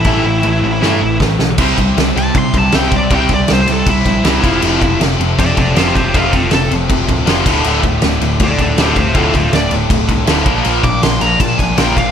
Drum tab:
CC |x-x-----|xxxxxxxx|xxxxxxxx|xxxxxxxx|
SD |----o-oo|--o---o-|--o---o-|--o---o-|
BD |o-----o-|oo--oo-o|oo--oo-o|-o--oo-o|

CC |xxxxxxxx|xxxxxxxx|xxxxxxxx|xxxxxxxx|
SD |--o---o-|--o---o-|--o---o-|--o---o-|
BD |oo--oo-o|-o--oo-o|oo--oo-o|-o--oo-o|